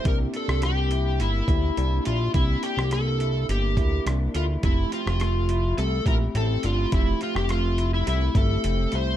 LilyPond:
<<
  \new Staff \with { instrumentName = "Electric slide guitar" } { \time 4/4 \key f \major \tempo 4 = 105 bes'8 a'8 g'4 e'4. f'8 | e'8 g'8 a'4 g'4 r8 f'8 | e'8 f'4. a'8 bes'8 a'8 f'8 | e'8 f'16 g'16 f'8. e'16 e'8 a'4 c''8 | }
  \new Staff \with { instrumentName = "Clean electric guitar" } { \time 4/4 \key f \major c8 d'8 bes8 e'8 bes8 e'8 d'8 e'8 | c8 d'8 bes8 e'8 bes8 e'8 d'8 e'8 | f8 c'8 a8 e'8 a8 e'8 c'8 d'16 e'16 | f8 c'8 a8 e'8 a8 e'8 c'8 e'8 | }
  \new Staff \with { instrumentName = "Tine electric piano" } { \time 4/4 \key f \major <bes d' e' g'>4. r4 <bes d' e' g'>4 r8 | <bes d' e' g'>4. r4 <bes d' e' bes'>4 r8 | <aes a c' g' e''>4. r4 <a c' e' g'>4 r8 | <a c' g' e''>4. r4 <a c' e' g'>4 r8 | }
  \new Staff \with { instrumentName = "Analog synth bass" } { \clef bass \time 4/4 \key f \major c,8 r16 c,4~ c,16 g,,8 d,8 c,8 bes,,8 | c,8 r16 c,4~ c,16 g,,8 d,8 c,8 d,8 | f,,8 r16 f,,4~ f,,16 c,8 bes,,8 a,,8 g,,8 | f,,8 r16 f,,4~ f,,16 c,8 g,,8 f,,8 c,8 | }
  \new DrumStaff \with { instrumentName = "Drums" } \drummode { \time 4/4 <hh bd>8 hh16 ss16 <hh ss>8 hh8 hh8 <hh bd>8 hh8 hh8 | <hh bd>8 hh16 ss16 <hh ss>8 hh8 hh8 <hh bd>8 <hh ss>8 hh8 | <hh bd>8 hh16 ss16 <hh ss>8 hh8 hh8 <hh bd>8 hh8 hh8 | <hh bd>8 hh16 ss16 <hh ss>8 hh8 hh8 <hh bd>8 hh8 hh8 | }
>>